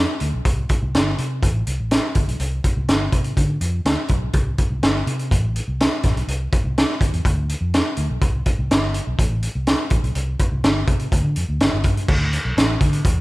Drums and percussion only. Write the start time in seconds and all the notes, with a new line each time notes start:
0.20 closed hi-hat
0.45 kick, closed hi-hat
0.69 kick, closed hi-hat
0.95 snare, closed hi-hat
1.07 snare
1.18 closed hi-hat
1.43 kick, closed hi-hat
1.67 closed hi-hat
1.91 snare, closed hi-hat
2.15 kick, closed hi-hat
2.29 closed hi-hat
2.40 closed hi-hat
2.64 kick, closed hi-hat
2.88 snare, closed hi-hat
3.12 kick, closed hi-hat
3.24 closed hi-hat
3.37 kick, closed hi-hat
3.61 closed hi-hat
3.85 snare, closed hi-hat
4.08 kick, closed hi-hat
4.33 kick, closed hi-hat
4.58 kick, closed hi-hat
4.83 snare, closed hi-hat
4.95 snare
5.07 closed hi-hat
5.19 closed hi-hat
5.31 kick, closed hi-hat
5.56 closed hi-hat
5.80 snare, closed hi-hat
6.03 kick, snare, closed hi-hat
6.17 closed hi-hat
6.28 closed hi-hat
6.52 kick, closed hi-hat
6.78 snare, closed hi-hat
6.90 snare
7.01 kick, closed hi-hat
7.14 closed hi-hat
7.25 kick, closed hi-hat
7.49 closed hi-hat
7.74 snare, closed hi-hat
7.97 closed hi-hat
8.21 kick, closed hi-hat
8.46 kick, closed hi-hat
8.71 snare, closed hi-hat
8.83 snare
8.94 closed hi-hat
9.19 kick, closed hi-hat
9.42 closed hi-hat
9.67 snare, closed hi-hat
9.90 kick, closed hi-hat
10.04 closed hi-hat
10.15 closed hi-hat
10.39 kick, closed hi-hat
10.64 snare, closed hi-hat
10.87 kick, closed hi-hat
10.99 closed hi-hat
11.12 kick, closed hi-hat
11.36 closed hi-hat
11.60 snare, closed hi-hat
11.84 kick, closed hi-hat
11.97 closed hi-hat
12.08 kick, crash
12.33 closed hi-hat
12.58 snare, closed hi-hat
12.81 kick, closed hi-hat
12.93 closed hi-hat
13.05 kick, closed hi-hat